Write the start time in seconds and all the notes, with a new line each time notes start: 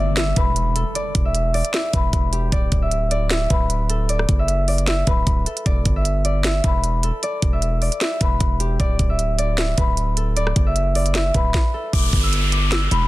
Already playing: G1 A4 B4 D5 E5, impact
0.17 E5, snare, closed hi-hat
0.36 E1 B4, kick, closed hi-hat
0.56 closed hi-hat
0.76 A4, closed hi-hat
0.95 D5, closed hi-hat
1.15 E1, kick, closed hi-hat
1.25 E5
1.35 closed hi-hat
1.54 D5, closed hi-hat, open hi-hat
1.65 closed hi-hat
1.74 E5, snare, closed hi-hat
1.93 E1 B4, kick, closed hi-hat
2.13 E1, kick, closed hi-hat
2.33 G4, closed hi-hat
2.52 D1 D5, kick, closed hi-hat
2.72 D1, kick, closed hi-hat
2.82 E5
2.91 closed hi-hat
3.11 D5, closed hi-hat
3.30 E5, snare, closed hi-hat
3.50 D1 B4, kick, closed hi-hat
3.70 closed hi-hat
3.90 A4, closed hi-hat
4.09 D5, closed hi-hat
4.19 cross-stick
4.29 F#1, kick, closed hi-hat
4.39 E5
4.48 closed hi-hat
4.68 D5, closed hi-hat, open hi-hat
4.78 closed hi-hat
4.87 E5, snare, closed hi-hat
5.07 D1 B4, kick, closed hi-hat
5.27 D1, kick, closed hi-hat
5.46 A4, closed hi-hat
5.57 closed hi-hat
5.66 E1 D5, kick, closed hi-hat
5.85 G1, kick, closed hi-hat
5.96 E5
6.05 closed hi-hat
6.25 D5, closed hi-hat
6.44 E5, snare, closed hi-hat
6.64 E1 B4, kick, closed hi-hat
6.84 closed hi-hat
7.03 A4, closed hi-hat
7.23 D5, closed hi-hat
7.42 E1, kick, closed hi-hat
7.53 E5
7.62 closed hi-hat
7.82 D5, closed hi-hat, open hi-hat
7.92 closed hi-hat
8.01 E5, snare, closed hi-hat
8.21 E1 B4, kick, closed hi-hat
8.40 E1, kick, closed hi-hat
8.60 G4, closed hi-hat
8.80 D1 D5, kick, closed hi-hat
8.99 D1, kick, closed hi-hat
9.10 E5
9.19 closed hi-hat
9.38 D5, closed hi-hat
9.58 E5, snare, closed hi-hat
9.78 D1 B4, kick, closed hi-hat
9.97 closed hi-hat
10.17 A4, closed hi-hat
10.36 D5, closed hi-hat
10.47 cross-stick
10.56 F#1, kick, closed hi-hat
10.67 E5
10.76 closed hi-hat
10.95 D5, closed hi-hat, open hi-hat
11.06 closed hi-hat
11.15 E5, snare, closed hi-hat
11.34 D1 B4, kick, closed hi-hat
11.54 kick, snare
11.74 A4
11.93 E1 D6, kick, closed hi-hat, downlifter
12.13 G1, kick, open hi-hat
12.23 E6
12.33 closed hi-hat
12.52 D6, closed hi-hat
12.72 E6, snare, closed hi-hat
12.91 E1 B5, closed hi-hat